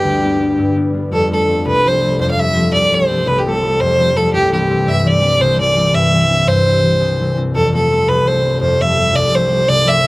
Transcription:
0.00 0.63 D2 medium
0.00 1.10 G2 medium
0.00 0.22 G3 soft
0.00 1.09 G3 medium
0.00 1.30 A3 soft
0.00 0.23 B3 soft
0.00 0.23 D4 medium
0.00 1.17 E4 medium
0.00 0.74 G4 medium
0.22 0.39 G3 soft
0.22 0.40 B3 soft
0.22 0.41 D4 medium
0.40 0.75 G3 soft
0.40 0.76 B3 soft
0.40 0.77 D4 soft
0.58 1.17 G2 medium
0.76 0.92 G3 soft
0.76 0.93 B3 soft
0.76 0.94 D4 soft
0.93 1.17 G3 soft
0.93 1.37 B3 soft
0.93 3.74 D4 medium
1.11 1.70 F2 medium
1.11 7.53 G2 medium
1.11 7.53 G3 medium
1.11 1.30 A4 medium
1.30 1.46 F3 soft
1.30 1.47 A3 soft
1.30 1.47 C4 soft
1.30 1.64 A4 medium
1.47 1.83 F3 soft
1.47 1.84 A3 soft
1.47 1.85 C4 medium
1.65 2.24 C2 medium
1.65 1.89 B4 medium
1.84 2.00 F3 soft
1.84 2.01 A3 soft
1.84 2.02 C4 soft
1.84 2.20 C5 medium
2.01 2.37 F3 soft
2.01 2.38 A3 soft
2.01 2.38 C4 soft
2.19 2.77 F2 medium
2.19 2.30 C5 medium
2.31 2.41 F5 medium
2.38 2.54 F3 soft
2.38 2.56 A3 soft
2.38 2.56 C4 soft
2.38 2.73 E5 medium
2.55 2.90 F3 soft
2.55 2.92 A3 soft
2.55 2.92 C4 medium
2.72 3.25 C2 medium
2.72 2.96 D5 loud
2.91 3.08 F3 soft
2.91 3.09 A3 soft
2.91 3.09 C4 medium
2.91 3.29 C5 medium
3.09 3.44 F3 soft
3.09 3.46 A3 soft
3.09 3.46 C4 soft
3.26 3.84 C2 medium
3.26 3.40 B4 medium
3.39 3.50 G4 medium
3.45 3.61 F3 soft
3.45 3.62 A3 soft
3.45 3.63 C4 medium
3.45 3.82 A4 medium
3.62 3.98 F3 soft
3.62 3.99 A3 soft
3.62 4.00 C4 soft
3.80 4.38 F2 medium
3.80 4.18 C5 loud
3.99 4.15 F3 soft
3.99 4.16 A3 soft
3.99 4.17 C4 medium
4.16 4.38 F3 soft
4.16 7.49 A3 soft
4.16 4.53 C4 medium
4.16 4.33 A4 medium
4.34 5.38 C2 medium
4.34 4.51 G4 medium
4.52 4.68 E3 medium
4.52 4.68 G3 soft
4.52 4.69 C4 soft
4.52 4.90 G4 medium
4.69 5.04 E3 soft
4.69 5.04 G3 soft
4.69 5.05 C4 medium
4.86 5.92 G2 medium
4.86 4.99 E5 medium
4.99 5.09 E5 medium
5.04 5.21 E3 medium
5.04 5.21 G3 medium
5.04 5.23 C4 medium
5.04 5.42 D5 medium
5.22 5.58 E3 soft
5.22 5.59 G3 soft
5.22 5.60 C4 soft
5.40 6.99 C2 medium
5.40 5.60 C5 medium
5.59 5.75 E3 soft
5.59 5.76 G3 soft
5.59 5.77 C4 medium
5.59 5.96 D5 medium
5.76 6.12 E3 soft
5.76 6.12 G3 soft
5.76 6.14 C4 soft
5.93 6.45 G2 medium
5.93 6.49 E5 loud
6.13 6.28 E3 soft
6.13 6.29 G3 soft
6.13 6.30 C4 medium
6.29 6.65 E3 soft
6.29 6.65 G3 soft
6.29 6.66 C4 medium
6.47 7.59 G2 medium
6.47 7.37 C5 loud
6.66 6.82 E3 soft
6.66 6.82 G3 soft
6.66 6.84 C4 medium
6.83 7.19 E3 soft
6.83 7.19 G3 soft
6.83 7.20 C4 soft
7.00 7.59 C2 medium
7.19 7.35 E3 soft
7.19 7.36 G3 soft
7.19 7.37 C4 soft
7.36 7.59 E3 soft
7.36 7.59 G3 soft
7.36 7.74 C4 soft
7.54 8.12 F2 medium
7.54 10.07 G2 medium
7.54 10.07 G3 medium
7.54 7.73 A4 medium
7.73 7.90 F3 soft
7.73 7.91 A3 soft
7.73 7.92 C4 medium
7.73 8.10 A4 medium
7.91 8.24 F3 soft
7.91 8.26 A3 soft
7.91 8.28 C4 medium
8.07 8.66 C2 medium
8.07 8.29 B4 medium
8.25 8.42 F3 medium
8.25 8.43 A3 soft
8.25 8.61 C5 medium
8.29 8.44 C4 medium
8.43 8.79 F3 soft
8.43 8.79 A3 soft
8.43 8.80 C4 soft
8.61 9.19 F2 medium
8.61 8.82 C5 medium
8.79 8.95 F3 soft
8.79 8.96 A3 soft
8.79 8.97 C4 medium
8.79 9.17 E5 medium
8.96 9.31 F3 soft
8.96 9.33 A3 soft
8.96 9.33 C4 medium
9.13 9.67 C2 medium
9.13 9.36 D5 loud
9.32 9.48 F3 soft
9.32 9.50 A3 soft
9.32 9.50 C4 medium
9.32 9.70 C5 medium
9.49 9.84 F3 soft
9.49 9.86 A3 soft
9.49 9.88 C4 soft
9.68 10.07 C2 medium
9.68 9.89 D5 loud
9.85 10.02 F3 soft
9.85 10.04 A3 soft
9.85 10.04 C4 soft
9.85 10.07 E5 loud
10.03 10.07 F3 soft
10.03 10.07 A3 soft

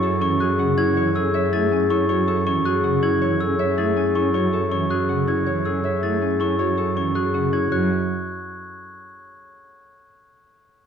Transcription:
0.00 7.60 F#2 medium
0.00 0.39 G#4 loud
0.00 0.27 A4 medium
0.00 1.89 A4 medium
0.00 0.20 C#5 loud
0.00 1.33 E5 medium
0.00 0.58 F#5 medium
0.00 1.71 G#5 medium
0.21 0.36 E3 medium
0.21 0.46 C#4 loud
0.21 0.77 C#5 medium
0.21 0.46 C#6 loud
0.40 0.65 F#4 medium
0.40 1.14 G#4 loud
0.40 0.65 F#6 medium
0.59 0.73 C#3 medium
0.59 0.83 C#4 medium
0.59 2.82 F#5 medium
0.78 1.02 E4 loud
0.78 0.96 C#5 medium
0.78 1.02 G#6 loud
0.97 1.11 E3 loud
0.97 1.21 C#5 medium
0.97 2.08 C#5 loud
1.15 1.30 C#4 medium
1.15 1.52 G#4 medium
1.15 1.40 A4 medium
1.15 1.40 E6 medium
1.34 1.58 C#5 loud
1.34 3.58 E5 medium
1.53 1.67 A3 loud
1.53 1.77 E4 medium
1.53 2.64 G#4 loud
1.53 1.77 A6 medium
1.72 1.96 C#4 medium
1.72 3.95 G#5 medium
1.90 2.04 C#4 medium
1.90 2.15 E4 loud
1.90 2.26 A4 medium
1.90 2.08 C#6 medium
2.09 2.23 F#3 loud
2.09 2.34 F#4 medium
2.09 2.45 C#5 loud
2.09 2.34 C#6 medium
2.27 4.14 A4 medium
2.27 2.52 A4 medium
2.46 2.61 E3 medium
2.46 2.71 C#4 loud
2.46 3.01 C#5 medium
2.46 2.71 C#6 loud
2.65 2.90 F#4 medium
2.65 3.39 G#4 loud
2.65 2.90 F#6 medium
2.84 2.98 C#3 medium
2.84 3.08 C#4 loud
2.84 5.08 F#5 medium
3.02 3.27 E4 loud
3.02 3.20 C#5 medium
3.02 3.27 G#6 medium
3.21 3.36 E3 loud
3.21 4.33 C#5 loud
3.21 3.46 C#5 medium
3.40 3.55 C#4 medium
3.40 3.77 G#4 medium
3.40 3.65 A4 medium
3.40 3.65 E6 medium
3.59 3.84 C#5 loud
3.59 5.83 E5 medium
3.78 3.92 A3 loud
3.78 4.02 E4 medium
3.78 4.89 G#4 loud
3.78 4.02 A6 medium
3.96 4.21 C#4 medium
3.96 6.21 G#5 medium
4.15 4.29 C#4 medium
4.15 4.40 E4 medium
4.15 4.52 A4 medium
4.15 4.33 C#6 medium
4.34 4.48 F#3 medium
4.34 4.59 F#4 medium
4.34 4.71 C#5 loud
4.34 4.59 C#6 medium
4.53 4.77 A4 medium
4.53 6.39 A4 medium
4.72 4.86 E3 medium
4.72 4.96 C#4 medium
4.72 5.27 C#5 medium
4.72 4.96 C#6 medium
4.90 5.15 F#4 medium
4.90 5.64 G#4 medium
4.90 5.15 F#6 medium
5.09 5.23 C#3 medium
5.09 5.34 C#4 medium
5.09 7.33 F#5 medium
5.28 5.52 E4 loud
5.28 5.45 C#5 medium
5.28 5.52 G#6 medium
5.46 5.61 E3 loud
5.46 5.71 C#5 medium
5.46 6.58 C#5 medium
5.65 5.80 C#4 medium
5.65 6.02 G#4 medium
5.65 5.90 A4 medium
5.65 5.90 E6 medium
5.84 6.08 C#5 medium
5.84 9.74 E5 medium
6.03 6.17 A3 medium
6.03 6.27 E4 medium
6.03 7.14 G#4 medium
6.03 6.27 A6 medium
6.22 6.46 C#4 medium
6.22 7.73 G#5 medium
6.40 6.55 C#4 medium
6.40 6.65 E4 medium
6.40 6.76 A4 medium
6.40 6.58 C#6 medium
6.59 6.73 F#3 medium
6.59 6.83 F#4 medium
6.59 6.96 C#5 medium
6.59 6.84 C#6 medium
6.78 7.02 A4 medium
6.78 9.98 A4 medium
6.96 7.11 E3 medium
6.96 7.21 C#4 medium
6.96 7.52 C#5 medium
6.96 7.21 C#6 medium
7.15 7.40 F#4 medium
7.15 7.73 G#4 medium
7.15 7.40 F#6 medium
7.34 7.48 C#3 medium
7.34 7.59 C#4 medium
7.34 9.98 F#5 medium
7.53 7.77 E4 medium
7.53 7.70 C#5 medium
7.53 7.77 G#6 medium
7.72 7.89 F#2 medium
7.72 7.89 F#3 medium
7.72 7.89 F#4 medium
7.72 7.89 C#5 medium
7.72 7.89 F#6 medium

